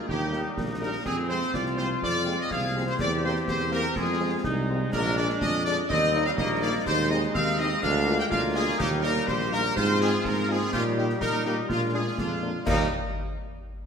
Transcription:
Already playing: A#3
0.07 D#2 G3 D#4 G4, concert bass drum
0.32 G3 A#3 D#4, snare
0.57 A#1, concert bass drum, snare
0.81 G3 A#3 D#4 A#4
1.05 F2 F3 C4 G#4, concert bass drum, snare, crash
1.29 F3 G#3 C4 C5
1.42 snare
1.54 C2 F4 D5, concert bass drum, snare
1.66 snare
1.77 F3 G#3 C4 C5, snare
2.02 F2 D5, concert bass drum
2.26 F3 G#3 C4, snare
2.38 D#5
2.50 C2 G#4 F5, concert bass drum, snare
2.75 F3 G#3 C4
2.87 C5
2.99 E2 A#3 C4 G4 D5, concert bass drum, snare, crash
3.23 G3 A#3 C4 C5
3.36 snare
3.48 E2 C5, concert bass drum, snare
3.60 snare
3.71 G3 A#3 C4 A#4, snare
3.96 F2 G#3 F4 G#4, concert bass drum, snare
4.21 F3 G#3 C4
4.44 C2 D#4, concert bass drum, snare
4.70 F3 G#3 C4
4.93 A#1 D4 A#4, concert bass drum, snare, crash
5.17 F3 G#3 D4 D5
5.29 snare
5.41 F2 D#5, concert bass drum, snare
5.54 snare
5.65 F3 G#3 D4 D5, snare
5.89 D#2 G3 C4 D#4 D#5, concert bass drum
6.14 G3 A#3 D#4, snare
6.25 F5
6.38 A#1 A#3 D#5, concert bass drum, snare
6.61 G3 A#3 D#4 D5
6.86 D#2 G#3 D#4 C5, concert bass drum, snare, crash
7.09 G#3 C4 D#4 D#5
7.23 snare
7.34 D#2 C4 F5, concert bass drum, snare
7.47 snare
7.58 G#3 C4 D#4 D#5, snare
7.82 D2 A#3 D4 F5, concert bass drum
8.07 G#3 A#3 F4, snare
8.19 G5
8.30 D2 F4 F5, concert bass drum, snare
8.55 G#3 A#3 F4 G#4
8.79 D#2 G3 D#4 G4, concert bass drum, snare, crash
9.02 G3 A#3 D#4 A#4
9.16 snare
9.27 A#1 G4 C5, concert bass drum, snare
9.41 snare
9.52 G3 A#3 D#4 A#4, snare
9.75 G#2 F3 C4 F4 C5, concert bass drum
10.01 G#3 C4 F4 G#4, snare
10.25 G#2 A#4, concert bass drum, snare
10.49 G#3 C4 F4 G#4
10.72 A#2 G3 D#4 F4 G4, concert bass drum, snare, crash
10.97 G3 A#3 D#4 G4
11.09 snare
11.21 A#2 D#4 A#4, concert bass drum, snare
11.33 snare
11.45 G3 A#3 D#4 G4, snare
11.69 A#2 G#3 D4 F4, concert bass drum, snare
11.93 G#3 A#3 D4 G#4
12.17 F2 D4 F4, concert bass drum, snare
12.42 G#3 A#3 D4
12.66 D#2 G3 A#3 D#4 G4 A#4 D#5, concert bass drum, snare, crash

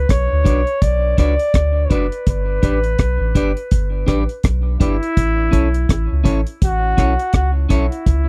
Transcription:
Already playing: B4
0.09 B1 C#5, kick, cross-stick, closed hi-hat
0.32 D2
0.44 B1 D4 F#4 B4 D5, kick, closed hi-hat
0.67 closed hi-hat
0.82 B1 D5, kick, closed hi-hat
1.18 C#2 D4 F#4 B4 D5, kick, cross-stick, closed hi-hat
1.39 closed hi-hat
1.54 D2, kick, cross-stick, closed hi-hat
1.85 C#5
1.90 F#1 D4 F#4 B4 D5, kick, closed hi-hat
2.12 closed hi-hat
2.27 G1 B4, kick, closed hi-hat
2.62 A1 D4 G4 B4 D5, kick, closed hi-hat
2.84 closed hi-hat
2.99 B1, kick, cross-stick, closed hi-hat
3.20 A1
3.35 G1 D4 G4 B4 D5, kick, closed hi-hat
3.57 closed hi-hat
3.71 G1, kick, closed hi-hat
4.07 A1 D4 G4 B4 D5, kick, cross-stick, closed hi-hat
4.29 closed hi-hat
4.44 B1, kick, cross-stick, closed hi-hat
4.80 G1 D4 E4 G4 B4 D5, kick, closed hi-hat
5.03 closed hi-hat
5.17 A1, kick, closed hi-hat
5.51 B1 C#4 E4 A4 C#5, kick, closed hi-hat
5.74 closed hi-hat
5.89 A1, kick, cross-stick, closed hi-hat
6.12 C#2
6.24 A1 C#4 E4 A4 C#5, kick, closed hi-hat
6.47 closed hi-hat
6.62 A1 F#4, kick, closed hi-hat
6.97 B1 C#4 E4 A4 C#5, kick, cross-stick, closed hi-hat
7.19 closed hi-hat
7.33 C#2 F#4, kick, cross-stick, closed hi-hat
7.69 B1 C#4 E4 A4 C#5, kick, closed hi-hat
7.92 closed hi-hat
8.06 C#2, kick, closed hi-hat

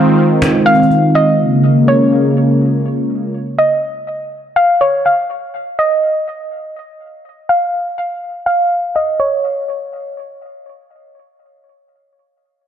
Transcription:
Already playing: D#3 G#3 C4 F4
0.42 cajon slap
0.66 F5, cajon slap
0.74 cajon slap
0.82 cajon slap
0.91 cajon slap
1.15 D#5
1.39 C#3 A#3
1.88 C#5
3.58 D#5
4.56 F5
4.81 C#5
5.06 F5
5.79 D#5
7.49 F5
8.46 F5
8.96 D#5
9.20 C#5

